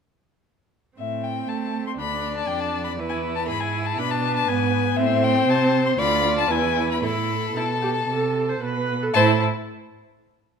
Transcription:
0.98 1.45 A2 soft
0.98 2.00 C4 soft
0.98 1.26 E5 soft
1.24 1.50 G5 medium
1.48 1.97 A3 soft
1.48 1.86 A5 soft
1.87 1.92 C6 medium
1.98 2.48 D2 soft
1.98 2.48 D4 soft
1.98 3.01 D5 medium
1.98 2.36 B5 medium
2.37 2.49 A5 medium
2.48 2.99 F2 soft
2.48 2.98 D4 soft
2.48 2.61 G5 medium
2.60 2.83 A5 medium
2.84 2.92 B5 medium
2.98 3.50 E2 medium
2.98 3.48 E4 soft
2.98 3.50 B4 medium
3.09 3.17 G#5 medium
3.35 3.47 A5 medium
3.48 3.97 G#2 medium
3.48 4.01 E4 medium
3.48 4.01 G#4 medium
3.48 3.62 B5 medium
3.60 3.87 G#5 medium
3.85 4.00 A5 medium
3.98 4.47 B2 medium
3.98 4.50 D4 medium
3.98 4.99 B4 medium
3.98 4.12 B5 loud
4.11 4.36 A5 medium
4.36 4.49 A5 medium
4.48 4.97 G#2 medium
4.48 5.01 B3 medium
4.48 4.98 G#5 medium
4.97 5.47 A2 medium
4.97 5.98 C4 medium
4.97 6.00 C5 medium
4.97 5.25 E5 medium
5.24 5.51 G5 loud
5.47 5.97 C3 medium
5.47 5.85 A5 medium
5.86 5.91 C6 medium
5.98 6.48 D2 medium
5.98 6.52 F4 medium
5.98 6.50 D5 medium
5.98 6.36 B5 loud
6.38 6.52 A5 medium
6.48 7.02 E2 medium
6.48 7.02 E4 medium
6.48 7.05 B4 medium
6.48 6.89 G#5 medium
6.91 7.01 B5 medium
7.01 7.53 A2 medium
7.01 7.49 E4 soft
7.01 8.88 A4 medium
7.01 7.58 B5 medium
7.53 8.06 B2 medium
7.53 7.64 E4 medium
7.53 8.62 A5 medium
7.82 7.90 G4 medium
8.07 8.59 C3 medium
8.07 8.50 A4 medium
8.49 8.62 C5 medium
8.61 9.13 B2 medium
8.61 9.04 B4 medium
9.03 9.15 A4 medium
9.14 9.43 A2 medium
9.14 9.43 E4 medium
9.14 9.43 C5 medium
9.14 9.43 A5 loud

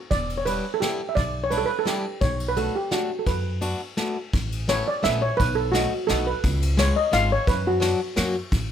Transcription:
0.11 0.57 E1 medium
0.11 0.39 D5 medium
0.11 kick medium
0.11 ride soft
0.30 ride soft
0.38 0.46 C#5 medium
0.46 0.65 G3 soft
0.46 0.65 B3 soft
0.46 0.65 D4 soft
0.46 0.65 E4 soft
0.46 0.74 B4 medium
0.46 ride soft
0.74 0.82 A4 medium
0.80 1.00 G3 soft
0.80 1.01 B3 soft
0.80 1.01 D4 soft
0.80 1.01 E4 soft
0.80 1.11 G4 medium
0.80 snare medium
0.80 ride soft
1.09 1.16 E5 medium
1.15 1.62 B1 medium
1.15 1.44 D5 medium
1.15 kick medium
1.15 ride soft
1.44 1.52 C#5 medium
1.51 1.70 G3 soft
1.51 1.70 B3 soft
1.51 1.70 D4 soft
1.51 1.70 E4 soft
1.51 1.58 B4 medium
1.51 ride soft
1.58 1.65 A4 medium
1.66 1.79 B4 medium
1.79 1.87 A4 medium
1.86 2.05 G3 medium
1.86 2.05 B3 medium
1.86 2.05 D4 soft
1.86 2.05 E4 soft
1.86 2.23 G4 medium
1.86 snare soft
1.86 ride soft
2.21 2.67 B1 medium
2.21 2.49 C#5 medium
2.21 kick medium
2.21 ride soft
2.40 ride soft
2.48 2.56 B4 medium
2.57 2.75 A3 soft
2.57 2.75 B3 soft
2.57 2.75 D4 soft
2.57 2.75 F#4 medium
2.57 2.76 A4 medium
2.57 ride soft
2.76 2.92 G4 medium
2.91 3.10 A3 medium
2.91 3.10 B3 soft
2.91 3.10 D4 medium
2.91 3.19 F#4 medium
2.91 3.10 F#4 medium
2.91 snare medium
2.91 ride soft
3.19 3.27 A4 soft
3.26 3.73 F#2 medium
3.26 3.94 B4 medium
3.26 kick medium
3.26 ride soft
3.61 3.80 A3 soft
3.61 3.80 B3 soft
3.61 3.80 D4 soft
3.61 3.81 F#4 soft
3.61 ride soft
3.97 4.16 A3 medium
3.97 4.16 B3 soft
3.97 4.16 D4 soft
3.97 4.17 F#4 medium
3.97 snare soft
3.97 ride soft
4.33 4.80 A1 medium
4.33 kick medium
4.33 ride soft
4.52 ride soft
4.68 4.87 A3 medium
4.68 4.87 B3 soft
4.68 4.87 C#4 soft
4.68 4.87 E4 medium
4.68 4.88 C#5 medium
4.68 snare medium
4.68 ride soft
4.88 5.05 D5 medium
5.03 5.28 A#1 medium
5.03 5.22 A3 medium
5.03 5.22 B3 soft
5.03 5.22 C#4 soft
5.03 5.22 E4 medium
5.03 5.21 E5 medium
5.03 snare medium
5.03 ride soft
5.22 5.38 C#5 medium
5.37 5.85 B1 loud
5.37 5.57 B4 medium
5.37 kick medium
5.37 ride soft
5.55 5.73 A4 medium
5.72 5.92 A3 medium
5.72 5.92 B3 soft
5.72 5.92 D#4 medium
5.72 6.09 F#4 medium
5.72 5.92 F#4 medium
5.72 snare medium
5.72 ride medium
6.07 6.32 B1 medium
6.07 6.27 A3 medium
6.07 6.27 B3 soft
6.07 6.27 D#4 medium
6.07 6.27 F#4 medium
6.07 6.27 A4 medium
6.07 snare medium
6.07 ride soft
6.27 6.42 B4 medium
6.44 6.89 C#2 loud
6.44 kick medium
6.44 ride soft
6.62 ride soft
6.77 6.96 G#3 medium
6.77 6.96 B3 soft
6.77 6.96 C#4 soft
6.77 6.96 F4 medium
6.77 6.97 C#5 medium
6.77 snare medium
6.77 ride medium
6.96 7.13 D#5 medium
7.12 7.35 G#1 medium
7.12 7.30 G#3 medium
7.12 7.31 B3 medium
7.12 7.31 C#4 soft
7.12 7.31 F4 medium
7.12 7.32 F5 loud
7.12 snare soft
7.12 ride soft
7.32 7.48 C#5 medium
7.47 7.93 F#2 loud
7.47 7.66 B4 medium
7.47 kick medium
7.47 ride soft
7.67 8.32 F#4 medium
7.80 7.99 F#3 medium
7.80 7.99 B3 soft
7.80 7.99 D4 medium
7.80 7.99 F#4 soft
7.80 snare medium
7.80 ride soft
8.16 8.40 F#2 medium
8.16 8.35 F#3 medium
8.16 8.35 A#3 medium
8.16 8.35 C#4 soft
8.16 8.35 F#4 medium
8.16 snare soft
8.16 ride soft
8.52 8.72 A1 medium
8.52 kick medium
8.52 ride soft

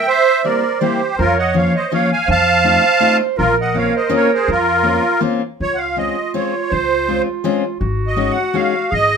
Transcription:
0.08 1.00 C5 medium
0.08 0.42 C5 medium
0.08 0.46 E5 loud
0.44 0.63 G3 medium
0.44 0.63 A#3 soft
0.44 0.63 C4 soft
0.44 0.63 E4 soft
0.44 0.79 A#4 medium
0.44 0.82 D5 medium
0.80 1.00 G3 medium
0.80 1.00 A#3 medium
0.80 1.00 C4 soft
0.80 1.00 E4 medium
0.80 1.16 G4 medium
0.80 1.19 C5 medium
1.18 1.67 F2 medium
1.18 1.37 F4 medium
1.18 1.38 A#4 loud
1.18 1.97 C#5 medium
1.39 1.55 D#5 medium
1.39 1.57 F#5 medium
1.54 1.73 F3 medium
1.54 1.73 A#3 soft
1.54 1.73 C#4 soft
1.54 1.73 F4 soft
1.54 1.73 C#5 medium
1.54 1.75 F5 medium
1.75 1.92 C5 soft
1.75 1.93 D#5 medium
1.92 2.10 F3 medium
1.92 2.10 A#3 medium
1.92 2.10 C#4 medium
1.92 2.10 F4 medium
1.92 2.09 C#5 medium
1.92 2.11 F5 medium
2.12 2.28 F5 medium
2.12 2.30 G#5 medium
2.27 2.76 F2 medium
2.27 3.39 C5 medium
2.27 3.17 A5 loud
2.31 3.17 F5 medium
2.64 2.83 A3 medium
2.64 2.83 C4 soft
2.64 2.83 D#4 soft
2.64 2.83 F4 medium
3.00 3.20 A3 medium
3.00 3.19 C4 medium
3.00 3.19 D#4 medium
3.00 3.19 F4 medium
3.38 3.86 A#1 medium
3.38 3.55 F4 medium
3.38 4.87 A#4 loud
3.38 3.57 A#4 loud
3.61 3.76 D#5 medium
3.61 3.77 F#5 medium
3.74 3.93 A#3 medium
3.74 3.93 C4 soft
3.74 3.93 C#4 soft
3.74 3.93 F4 medium
3.74 3.93 C#5 soft
3.74 3.95 F5 medium
3.96 4.11 C5 medium
3.96 4.13 D#5 medium
4.09 4.29 A#3 medium
4.09 4.29 C4 medium
4.09 4.29 C#4 medium
4.09 4.29 F4 medium
4.15 4.31 A#4 medium
4.15 4.32 C#5 medium
4.34 4.49 G#4 medium
4.34 4.50 C5 medium
4.48 4.97 F2 medium
4.48 5.20 F4 medium
4.48 5.20 A#4 loud
4.83 5.03 A#3 medium
4.83 5.03 C4 soft
4.83 5.03 C#4 soft
4.83 5.03 F4 medium
4.83 5.42 F4 medium
5.21 5.41 A#3 medium
5.21 5.41 C4 medium
5.21 5.41 C#4 medium
5.21 5.41 F4 medium
5.60 6.09 C#2 medium
5.60 7.78 F4 medium
5.60 5.76 C#5 loud
5.75 5.98 F5 medium
5.75 5.79 F#5 medium
5.96 6.16 G#3 soft
5.96 6.16 C4 soft
5.96 6.16 C#4 soft
5.96 6.16 F4 soft
5.96 6.32 D#5 medium
6.34 6.53 G#3 medium
6.34 6.53 C4 medium
6.34 6.53 C#4 soft
6.34 6.53 F4 medium
6.34 6.72 C#5 medium
6.70 7.19 C#2 medium
6.70 7.22 C5 loud
7.08 7.27 G#3 soft
7.08 7.26 C4 soft
7.08 7.27 C#4 soft
7.08 7.27 F4 medium
7.44 7.63 G#3 medium
7.44 7.63 C4 medium
7.44 7.63 C#4 medium
7.44 7.63 F4 medium
7.80 8.29 G#1 medium
7.80 8.93 F#4 medium
8.07 8.32 D#5 medium
8.16 8.36 G#3 medium
8.16 8.36 C#4 medium
8.16 8.36 D#4 soft
8.16 8.37 F#4 medium
8.31 8.56 F#5 medium
8.54 8.73 G#3 medium
8.54 8.74 C#4 medium
8.54 8.74 D#4 soft
8.54 8.74 F#4 medium
8.54 8.93 F5 medium
8.91 9.17 G#1 medium
8.91 9.17 G#4 medium
8.91 9.17 D#5 loud

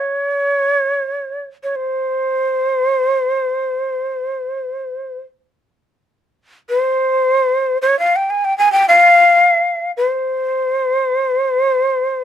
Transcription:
0.00 1.42 C#5 medium
1.63 1.77 C#5 soft
1.76 5.18 C5 medium
6.69 7.78 C5 medium
7.82 7.98 C#5 medium
7.99 8.17 F5 medium
8.16 8.32 G5 medium
8.30 8.46 G#5 medium
8.45 8.57 G5 medium
8.58 8.72 G#5 medium
8.72 8.88 G5 medium
8.88 9.91 F5 medium
9.97 12.24 C5 medium

